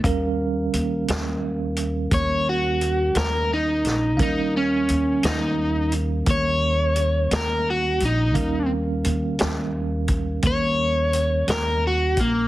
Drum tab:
HH |x-xx-xx-xx-x|x-xx-xx-xx-x|x-xx-xx-xx-x|
SD |---o-----o-o|---o-----o--|---o-----o--|
BD |o-----o-----|o-----o-----|o----oo----o|